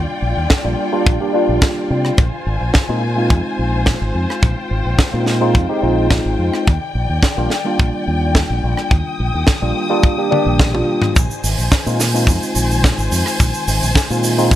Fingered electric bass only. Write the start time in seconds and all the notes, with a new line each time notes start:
0.22 A#1
0.37 D#2
0.65 A#1
1.07 A#1
1.49 A#1
1.90 C3
2.18 A#1
2.47 G#1
2.61 A#1
2.89 A#2
3.30 F2
3.59 A#1
4.02 G#1
4.15 F2
4.43 A#1
4.71 G#1
4.85 A#1
5.14 A#2
5.55 F2
5.83 A#1
6.26 G#1
6.39 F2
6.68 D#2
6.95 A#1
7.10 D#2
7.38 A#1
7.80 A#1
8.07 D#2
8.50 A#1
8.64 A#1
8.91 D#2
9.20 A#1
9.34 D#2
9.62 A#1
10.46 A#1
11.16 A#1
11.44 G#1
11.58 A#1
11.86 A#2
12.27 F2
12.56 A#1
12.98 G#1
13.12 F2
13.40 A#1
13.68 G#1
13.83 A#1
14.10 A#2
14.51 F2